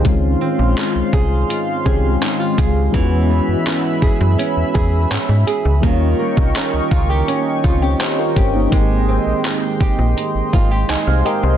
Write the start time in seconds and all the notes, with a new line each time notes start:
Already playing: G3 C4 D#4 G#4
0.03 C#2 D#3 G#3 C4 F5 C6, kick, closed hi-hat
0.07 C#4 F4
0.41 C4
0.59 A#1
0.77 F4, clap, closed hi-hat
0.95 C2
1.13 C2 G#4, kick
1.49 F4, closed hi-hat
1.84 C2 D#3 G#3 C4 C#4 G4 G#4, kick
2.22 D#4, clap, closed hi-hat
2.39 F4
2.58 C#2 G#4, kick, closed hi-hat
2.91 E2 E3 G#3 B3 E5 B5, kick, closed hi-hat
2.96 C#4 F4
3.04 F#4
3.30 B3
3.48 F#2
3.66 C#4, clap, closed hi-hat
4.02 F#2 G#4, kick
4.21 F#2
4.38 C#4, closed hi-hat
4.57 E2
4.74 E2 G#4, kick
5.11 G#2 C#4, clap, closed hi-hat
5.29 G#2
5.47 G#4, closed hi-hat
5.65 C#2
5.81 D#2 D#3 G3 A#3 A#4 D#5 G5 C#6, kick, closed hi-hat
5.85 C#4 F4
6.19 A#3
6.37 C2, kick
6.55 C#4, clap, closed hi-hat
6.74 C#2
6.91 C#2 F4, kick
7.09 G4
7.28 C#4, closed hi-hat
7.64 C#2 C4 F4, kick
7.82 C#4 G4
8.00 C#4 G4 C5, clap, closed hi-hat
8.19 F4 A#4
8.36 G1 C#4 G4, kick, closed hi-hat
8.55 A#3 D#4
8.70 G#1 D#3 G#3 A#3 C6, kick, closed hi-hat
8.74 C4 G4
9.08 C4
9.27 A#1
9.44 clap, closed hi-hat
9.81 A#1 G4, kick
9.99 A#1
10.17 D#4, closed hi-hat
10.35 G#1
10.53 G#1 F4, kick
10.71 G4
10.89 C2 D#4 D#5 G#5, clap, closed hi-hat
11.07 C2 C5 F5
11.25 G4 A#4 D#5, closed hi-hat
11.43 C2 G4 C5